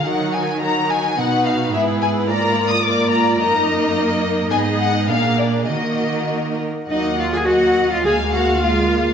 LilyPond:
<<
  \new Staff \with { instrumentName = "Violin section" } { \time 2/4 \key ees \minor \tempo 4 = 106 ges''8 aes''8 bes''8 aes''8 | fis''8 f''8 e''8 gis''8 | bes''8. ees'''16 d'''8 bes''8 | bes''4 r4 |
aes''8 ges''8 f''8 d''8 | ees''4. r8 | ges''4 ees''4 | f''2 | }
  \new Staff \with { instrumentName = "Violin section" } { \time 2/4 \key ees \minor << { bes'4 bes'4 | b'4 b'8 b'8 | d''4 d''4 | ees''2 |
ees''4 bes'4 | bes'4. r8 | ees''8 f''16 aes''16 ges''8. f''16 | aes''8 ges''8 f''4 | } \\ { ges'4 ges'4 | fis'4 gis'4 | bes'4 bes'4 | bes'2 |
aes'4 aes'4 | ges'4. r8 | r2 | r2 | } >> }
  \new Staff \with { instrumentName = "Cello section" } { \time 2/4 \key ees \minor ees2 | b,4 gis,4~ | gis,2 | ges,2 |
aes,4 bes,4 | ees4. r8 | ees'8 f'16 aes'16 ges'8. f'16 | aes'8 ges'8 f'4 | }
  \new Staff \with { instrumentName = "Viola section" } { \time 2/4 \key ees \minor <ges ees'>4 <ges ees'>4 | <b dis'>4 <b e'>4 | <bes f'>4 <bes f'>4 | <bes ees'>2 |
<ces' ees'>4 <bes d'>4 | <bes ees'>4. r8 | <ges bes>4 <ges bes>4 | <aes bes>4 <aes bes>4 | }
  \new Staff \with { instrumentName = "Double bass section" } { \clef bass \time 2/4 \key ees \minor r2 | r2 | r2 | r2 |
r2 | r2 | ees,2 | d,2 | }
>>